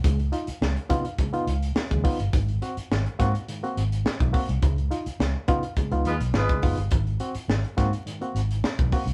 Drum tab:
HH |xxxx-xxxxxxx-xox|xxxx-xxxxxxx-xox|xxxx--xxxxxx-xox|xxxx-xxxxxxx-xox|
SD |----o-------o---|----o-o-----o---|----o-------o---|----o-o-----o---|
BD |o-----o-o----oo-|o-----o------oo-|o-----o-o----oo-|o-----o------oo-|